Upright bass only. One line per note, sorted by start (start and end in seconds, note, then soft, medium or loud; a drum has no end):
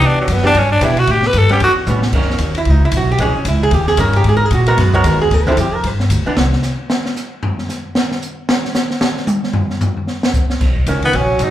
0.01 0.27 E2 medium
0.28 0.53 F#2 medium
0.54 0.80 G2 loud
0.81 1.06 B2 medium
1.07 1.33 A2 medium
1.33 1.59 G2 medium
1.60 1.86 E2 medium
1.87 2.12 A2 loud
2.12 2.38 F#2 medium
2.39 2.65 D#2 medium
2.65 2.91 C#2 medium
2.92 3.18 B1 loud
3.18 3.34 A#1 medium
3.35 muted upright bass stroke soft
3.45 3.70 C#2 medium
3.71 3.97 D#2 loud
3.97 4.24 G2 loud
4.24 4.50 G#2 medium
4.51 4.77 A#2 loud
4.78 5.03 F#2 loud
5.04 5.30 D#2 loud
5.30 5.56 D2 medium
5.57 5.83 F2 medium
5.83 6.09 G2 medium
6.10 6.25 D2 loud
6.27 muted upright bass stroke soft
6.37 6.52 C2 medium
10.60 10.86 B1 medium
10.86 11.12 C#2 medium
11.13 11.39 A#1 medium
11.40 11.50 B1 medium